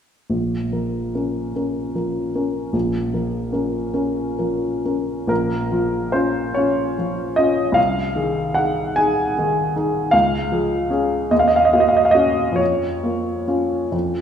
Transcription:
0.30 2.69 A#1 soft
0.72 1.11 F3 soft
0.72 1.11 A#4 soft
1.15 1.52 C#4 soft
1.15 1.52 A#4 soft
1.56 1.92 C#4 soft
1.56 1.92 A#4 soft
1.95 2.31 F3 soft
1.95 2.31 A#4 soft
2.35 2.70 C#4 soft
2.35 2.70 A#4 soft
2.73 5.25 A#1 soft
3.14 3.49 F3 soft
3.14 3.49 A#4 soft
3.52 3.90 C#4 soft
3.52 3.90 A#4 soft
3.94 4.34 C#4 soft
3.94 4.34 A#4 soft
4.39 4.82 F3 soft
4.39 4.81 A#4 soft
4.86 5.26 C#4 soft
4.86 5.26 A#4 soft
5.27 7.72 A#1 soft
5.27 6.14 A#4 medium
5.72 6.10 F3 soft
5.72 6.11 F4 soft
6.12 6.52 C#4 soft
6.12 6.53 F4 soft
6.12 6.56 C5 medium
6.54 6.94 C#4 soft
6.54 6.94 F4 soft
6.54 7.37 C#5 medium
6.98 7.34 F3 soft
6.98 7.35 F4 soft
7.36 7.73 C#4 soft
7.36 7.73 F4 soft
7.36 7.76 D#5 medium
7.72 10.07 C2 soft
7.72 8.55 F5 medium
8.16 8.52 D#3 soft
8.16 8.52 G#4 soft
8.54 8.93 D#4 soft
8.54 8.93 G#4 soft
8.54 8.96 F#5 medium
8.96 9.33 D#4 soft
8.96 9.34 G#4 soft
8.96 10.13 G#5 medium
9.38 9.72 D#3 soft
9.38 9.73 G#4 soft
9.76 10.10 D#4 soft
9.76 10.10 G#4 soft
10.11 11.28 C#2 soft
10.11 11.30 F5 medium
10.52 10.87 F3 soft
10.52 10.88 G#4 soft
10.90 11.27 C#4 soft
10.90 11.27 G#4 soft
11.31 12.56 D#2 soft
11.31 11.39 D#5 medium
11.39 11.47 F5 medium
11.48 11.56 D#5 medium
11.56 11.64 F5 medium
11.65 11.72 D#5 medium
11.73 12.12 A#3 soft
11.73 12.12 F#4 soft
11.73 11.81 F5 medium
11.80 11.89 D#5 medium
11.88 11.97 F5 medium
11.97 12.05 D#5 medium
12.05 12.14 F5 medium
12.11 12.55 C#4 soft
12.11 12.55 F#4 soft
12.11 12.58 D#5 medium
12.52 13.86 F2 soft
12.52 13.91 C#5 medium
13.03 13.44 A#3 soft
13.03 13.44 F4 soft
13.48 13.89 C#4 soft
13.48 13.89 F4 soft
13.92 14.21 F2 soft

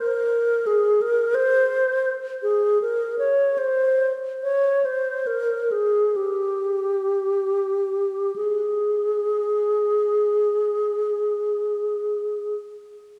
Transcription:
0.00 0.68 A#4 medium
0.67 1.03 G#4 medium
1.02 1.36 A#4 medium
1.35 2.11 C5 medium
2.43 2.81 G#4 medium
2.82 3.18 A#4 medium
3.19 3.59 C#5 medium
3.58 4.12 C5 medium
4.43 4.87 C#5 medium
4.85 5.28 C5 medium
5.27 5.73 A#4 medium
5.72 6.18 G#4 medium
6.16 8.35 G4 soft
8.36 12.55 G#4 soft

